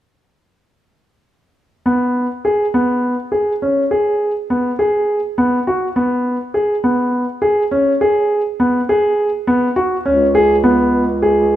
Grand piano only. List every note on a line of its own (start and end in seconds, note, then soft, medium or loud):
1.86 2.26 B3 soft
2.45 2.65 G#4 soft
2.74 3.14 B3 medium
3.32 3.52 G#4 soft
3.62 3.82 C#4 soft
3.91 4.31 G#4 soft
4.50 4.70 B3 soft
4.79 5.19 G#4 soft
5.38 5.58 B3 medium
5.67 5.87 F#4 soft
5.96 6.36 B3 medium
6.54 6.74 G#4 soft
6.84 7.24 B3 soft
7.42 7.62 G#4 medium
7.71 7.91 C#4 medium
8.01 8.41 G#4 medium
8.60 8.79 B3 soft
8.89 9.29 G#4 medium
9.47 9.67 B3 medium
9.76 9.96 F#4 medium
10.06 10.25 C#4 medium
10.35 10.55 G#4 medium
10.64 11.03 B3 medium
11.22 11.56 G#4 medium